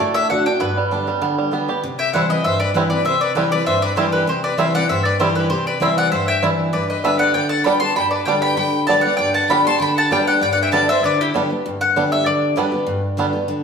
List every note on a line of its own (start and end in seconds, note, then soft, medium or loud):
0.00 0.58 A2 medium
0.00 0.43 A3 medium
0.00 0.14 D4 medium
0.00 0.14 D5 medium
0.14 0.29 D4 medium
0.14 0.29 E5 loud
0.30 0.45 D3 medium
0.30 0.46 A3 medium
0.30 0.45 D4 medium
0.30 0.46 D4 medium
0.30 0.44 F#4 medium
0.30 0.45 F#5 medium
0.46 0.60 D4 medium
0.46 0.61 D4 medium
0.46 0.60 F#4 medium
0.46 0.60 G5 medium
0.60 1.19 G2 medium
0.60 1.04 B3 medium
0.60 0.89 B4 medium
0.77 1.07 G3 medium
0.91 1.06 D3 medium
0.91 1.07 G3 medium
0.91 1.07 B3 medium
0.91 1.35 D4 medium
0.91 1.06 G4 medium
1.07 1.37 G3 medium
1.07 1.22 B3 medium
1.07 1.21 G4 medium
1.22 1.50 D3 medium
1.22 1.52 B3 medium
1.39 1.81 G3 medium
1.51 1.67 D3 medium
1.51 1.68 G3 medium
1.51 1.68 B3 medium
1.51 1.83 B3 medium
1.51 1.67 G4 medium
1.68 1.83 B3 medium
1.68 1.82 G4 medium
1.68 1.83 G4 medium
1.83 2.42 C3 medium
1.99 2.13 E5 medium
1.99 2.13 G5 medium
2.13 2.29 E3 medium
2.13 2.29 G3 medium
2.13 2.21 G3 medium
2.13 2.29 C4 medium
2.13 2.21 C4 medium
2.13 2.28 E4 loud
2.13 2.22 E4 medium
2.13 2.29 C5 medium
2.13 2.29 F#5 medium
2.30 2.45 C4 medium
2.30 2.44 E4 medium
2.30 2.44 B4 medium
2.30 2.44 D#5 medium
2.44 3.03 G2 medium
2.44 2.59 C5 medium
2.44 2.60 E5 medium
2.60 2.74 B4 medium
2.60 2.74 D5 medium
2.74 2.90 E3 medium
2.74 2.90 G3 medium
2.74 2.83 G3 medium
2.74 2.90 C4 loud
2.74 2.83 C4 medium
2.74 2.88 E4 loud
2.74 2.83 E4 medium
2.74 2.90 G4 medium
2.74 2.89 B4 medium
2.89 3.05 C4 soft
2.89 3.04 E4 medium
2.89 3.05 B4 medium
2.89 3.05 D5 medium
3.05 3.63 C3 medium
3.05 3.21 C5 medium
3.05 3.21 E5 medium
3.21 3.35 B4 medium
3.21 3.35 D5 medium
3.35 3.51 E3 medium
3.35 3.51 G3 medium
3.35 3.43 G3 medium
3.35 3.52 C4 loud
3.35 3.44 C4 medium
3.35 3.50 E4 medium
3.35 3.44 E4 medium
3.35 3.51 G4 medium
3.35 3.51 B4 medium
3.51 3.67 C4 medium
3.51 3.66 E4 medium
3.51 3.66 B4 medium
3.51 3.66 D5 medium
3.66 4.25 G2 loud
3.66 3.81 C5 medium
3.66 3.82 E5 medium
3.82 3.96 B4 medium
3.82 3.97 D5 medium
3.96 4.26 E3 medium
3.96 4.26 G3 loud
3.96 4.04 G3 medium
3.96 4.27 C4 loud
3.96 4.05 C4 medium
3.96 4.05 E4 medium
3.96 4.27 E4 medium
3.96 4.12 G4 medium
3.96 4.12 C5 medium
4.12 4.27 G4 medium
4.12 4.27 B4 medium
4.27 4.86 C3 medium
4.27 4.42 G4 medium
4.27 4.43 C5 medium
4.44 4.58 B4 medium
4.44 4.58 D5 medium
4.58 4.73 E3 medium
4.58 4.74 G3 medium
4.58 4.66 G3 medium
4.58 4.74 C4 loud
4.58 4.66 C4 medium
4.58 4.66 E4 medium
4.58 4.73 E4 loud
4.58 4.73 C5 medium
4.58 4.74 E5 medium
4.74 4.90 C4 soft
4.74 4.89 E4 medium
4.74 4.88 D5 medium
4.74 4.89 F#5 loud
4.89 5.48 G2 medium
4.89 5.04 C5 medium
4.89 5.05 E5 medium
5.05 5.19 B4 medium
5.05 5.19 D5 medium
5.19 5.49 E3 medium
5.19 5.49 G3 medium
5.19 5.27 G3 medium
5.19 5.49 C4 medium
5.19 5.27 C4 medium
5.19 5.27 E4 medium
5.19 5.50 E4 loud
5.19 5.35 G4 medium
5.19 5.35 C5 medium
5.35 5.50 G4 medium
5.35 5.49 B4 medium
5.50 6.08 C3 medium
5.50 5.66 G4 medium
5.50 5.66 C5 medium
5.67 5.81 B4 medium
5.67 5.81 D5 medium
5.80 6.10 E3 loud
5.80 6.10 G3 medium
5.80 5.88 G3 medium
5.80 6.10 C4 loud
5.80 5.89 C4 medium
5.80 6.11 E4 loud
5.80 5.89 E4 medium
5.80 5.96 C5 medium
5.80 5.97 E5 medium
5.97 6.11 D5 medium
5.97 6.11 F#5 loud
6.11 6.70 G2 medium
6.11 6.26 C5 medium
6.11 6.27 E5 medium
6.27 6.41 E5 medium
6.27 6.37 G5 medium
6.43 6.72 E3 medium
6.43 6.50 G3 medium
6.43 6.72 G3 medium
6.43 6.50 C4 medium
6.43 6.72 C4 medium
6.43 6.50 E4 medium
6.43 6.72 E4 loud
6.73 7.31 G2 medium
6.73 6.88 B4 medium
6.73 6.89 D5 medium
6.89 7.03 B4 medium
6.89 7.04 D#5 medium
7.04 7.33 D3 medium
7.04 7.11 G3 medium
7.04 7.34 G3 medium
7.04 7.11 B3 medium
7.04 7.34 B3 loud
7.04 7.11 D4 medium
7.04 7.34 G4 medium
7.04 7.19 B4 medium
7.04 7.19 E5 medium
7.19 7.33 D5 medium
7.19 7.34 F#5 medium
7.34 7.64 D3 medium
7.34 7.50 D5 medium
7.34 7.49 G5 medium
7.49 7.65 F#5 medium
7.49 7.64 A5 medium
7.64 7.80 D3 medium
7.64 7.72 G3 medium
7.64 7.81 G3 loud
7.64 7.81 B3 loud
7.64 7.73 B3 medium
7.64 7.73 D4 medium
7.64 7.80 G4 loud
7.64 7.81 G5 medium
7.64 7.79 B5 medium
7.80 7.96 B3 medium
7.80 7.95 G4 medium
7.80 7.95 A5 medium
7.80 7.95 C6 loud
7.96 8.54 G2 medium
7.96 8.11 G5 medium
7.96 8.11 B5 medium
8.11 8.26 B4 medium
8.11 8.25 D5 medium
8.25 8.56 D3 medium
8.25 8.34 G3 medium
8.25 8.56 G3 loud
8.25 8.34 B3 medium
8.25 8.56 B3 loud
8.25 8.34 D4 medium
8.25 8.57 G4 loud
8.25 8.42 D5 medium
8.25 8.41 G5 medium
8.42 8.56 G5 medium
8.42 8.56 B5 loud
8.57 8.87 D3 medium
8.57 8.86 G5 medium
8.57 8.86 B5 medium
8.87 9.03 D3 medium
8.87 8.95 G3 medium
8.87 9.04 G3 medium
8.87 8.95 B3 medium
8.87 9.04 B3 loud
8.87 8.96 D4 medium
8.87 9.02 G4 medium
8.87 9.03 D5 medium
8.87 9.01 A5 medium
9.01 9.18 G4 medium
9.01 9.18 D5 medium
9.01 9.16 F#5 medium
9.06 9.19 B3 medium
9.17 9.77 G2 loud
9.17 9.34 D5 medium
9.17 9.33 G5 medium
9.34 9.48 F#5 medium
9.34 9.49 A5 medium
9.49 9.64 D3 medium
9.49 9.65 G3 medium
9.49 9.57 G3 medium
9.49 9.65 B3 loud
9.49 9.57 B3 medium
9.49 9.57 D4 medium
9.49 9.64 G4 loud
9.49 9.64 G5 medium
9.49 9.65 B5 medium
9.65 9.80 B3 medium
9.65 9.79 G4 medium
9.65 9.79 A5 loud
9.65 9.80 C6 loud
9.80 10.09 D3 medium
9.80 9.95 G5 medium
9.80 9.97 B5 medium
9.96 10.09 F#5 medium
9.96 10.11 A5 loud
10.11 10.40 D3 medium
10.11 10.40 G3 medium
10.11 10.18 G3 medium
10.11 10.40 B3 loud
10.11 10.19 B3 medium
10.11 10.19 D4 medium
10.11 10.40 G4 loud
10.11 10.25 D5 medium
10.11 10.27 G5 medium
10.26 10.40 D5 medium
10.26 10.41 F#5 medium
10.41 11.00 G2 medium
10.41 10.51 D5 medium
10.41 10.52 G5 medium
10.52 10.61 D5 medium
10.52 10.62 F#5 medium
10.63 10.72 E5 medium
10.63 10.72 G5 medium
10.72 10.87 D3 medium
10.72 10.88 G3 loud
10.72 10.80 G3 medium
10.72 10.88 B3 loud
10.72 10.80 B3 medium
10.72 10.80 D4 medium
10.72 10.87 G4 medium
10.72 10.87 D5 medium
10.72 10.88 A5 medium
10.88 11.03 B3 soft
10.88 11.02 G4 medium
10.88 11.03 C5 medium
10.88 11.03 E5 loud
11.03 11.33 D3 medium
11.03 11.18 B4 medium
11.03 11.20 D5 medium
11.19 11.32 E4 medium
11.19 11.29 G4 medium
11.34 11.49 D3 medium
11.34 11.41 G3 medium
11.34 11.50 G3 medium
11.34 11.50 B3 loud
11.34 11.41 B3 medium
11.34 11.42 D4 medium
11.34 11.49 G4 medium
11.50 11.65 B3 medium
11.50 11.64 G4 medium
11.66 12.23 G2 loud
11.81 12.09 F#5 medium
11.96 12.25 D3 medium
11.96 12.03 G3 medium
11.96 12.25 G3 medium
11.96 12.03 B3 medium
11.96 12.25 B3 medium
11.96 12.03 D4 medium
11.96 12.26 G4 loud
12.12 12.26 E5 medium
12.26 12.54 D3 medium
12.26 12.55 D5 medium
12.56 12.71 D3 medium
12.56 12.72 G3 loud
12.56 12.64 G3 medium
12.56 12.72 B3 loud
12.56 12.64 B3 medium
12.56 12.64 D4 medium
12.56 12.71 G4 medium
12.56 13.00 B4 medium
12.72 12.87 B3 medium
12.72 12.86 G4 medium
12.87 13.45 G2 loud
13.17 13.33 D3 medium
13.17 13.33 G3 medium
13.17 13.26 G3 medium
13.17 13.34 B3 medium
13.17 13.26 B3 medium
13.17 13.26 D4 medium
13.17 13.32 G4 medium
13.33 13.49 B3 medium
13.33 13.48 G4 medium
13.48 13.63 D3 medium